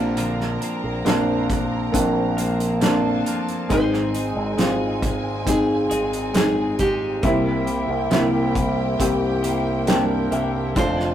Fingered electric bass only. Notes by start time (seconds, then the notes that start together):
Already playing: A#1
0.84 A#1
1.06 A#1
1.94 A#1
3.70 G#1
4.36 G#1
4.58 G#1
5.91 G#1
7.23 C2
7.89 C2
8.11 C2
9.00 C2
10.32 C2
10.76 F1